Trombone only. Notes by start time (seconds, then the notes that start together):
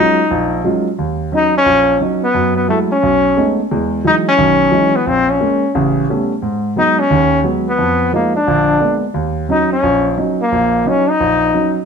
Already playing: D#4
1.36 D#4
1.57 C#4
2.23 B3
2.57 B3
2.70 A3
2.92 C#4
4.07 D#4
4.28 C#4
4.96 B3
5.08 C4
5.30 C#4
6.79 D#4
6.99 C#4
7.69 B3
8.15 A#3
8.36 D4
9.52 D#4
9.73 C#4
10.42 A#3
10.88 C#4
11.10 D#4